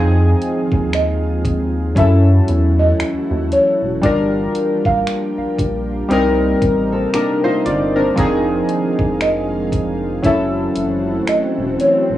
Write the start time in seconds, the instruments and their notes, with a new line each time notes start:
Already playing: analog synth bass F2, ambient pad D#3 G#3 F4, synth keys F3 C4 D#4 G#4
0.41 closed hi-hat
0.71 analog synth bass D#2, kick
0.93 marimba D#5, finger snap, closed hi-hat
1.45 kick, closed hi-hat
1.95 analog synth bass F#2, ambient pad E3 A3 F#4, synth keys F#3 C#4 E4, marimba E5, kick, closed hi-hat
1.99 synth keys A4
2.48 analog synth bass E2, closed hi-hat
2.79 marimba D#5
3.00 analog synth bass D#2, finger snap, closed hi-hat
3.31 analog synth bass D#2
3.52 marimba C#5, closed hi-hat
3.82 analog synth bass E1
4.02 analog synth bass G1, ambient pad F3 A#3 G4, synth keys G3 D4 F4, marimba D5, kick, closed hi-hat
4.06 synth keys A#4
4.55 closed hi-hat
4.85 analog synth bass A1, marimba F5, kick
5.07 finger snap, closed hi-hat
5.38 analog synth bass A#1
5.59 analog synth bass A#1, kick, closed hi-hat
6.09 analog synth bass C2, ambient pad C3 D#4, synth keys G3 C4 D#4, closed hi-hat
6.13 synth keys A#4
6.62 analog synth bass A1, kick, closed hi-hat
6.92 nylon-string guitar C4 A4
7.14 nylon-string guitar A#3 G4, synth keys D4 A#4, finger snap, closed hi-hat
7.44 nylon-string guitar A3 F4, synth keys D#4 C5
7.66 analog synth bass G1, nylon-string guitar G3 D#4, synth keys F4 D5, closed hi-hat
7.96 nylon-string guitar D#3 C4, synth keys D4 A#4
8.16 analog synth bass F1, ambient pad D#3 G#3 F4, synth keys F3 C4 D#4, kick, closed hi-hat, swell
8.20 synth keys G#4
8.69 closed hi-hat
8.99 analog synth bass F1, kick
9.21 marimba D#5, finger snap, closed hi-hat
9.72 kick, closed hi-hat
10.22 analog synth bass F#1, ambient pad E3 A3 F#4, synth keys F#3 C#4 E4, marimba E5, kick, closed hi-hat
10.26 synth keys A4
10.76 analog synth bass F#1, closed hi-hat
11.27 analog synth bass E1, marimba D#5, finger snap, closed hi-hat
11.58 analog synth bass E1
11.80 marimba C#5, closed hi-hat
12.10 analog synth bass E1